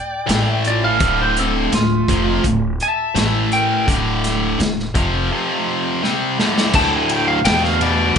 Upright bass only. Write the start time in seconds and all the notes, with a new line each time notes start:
0.29 A1
1.01 D1
1.72 D1
2.09 F1
2.45 D1
3.15 A1
3.88 D1
4.60 D1
4.95 F1
6.74 D2
7.45 E2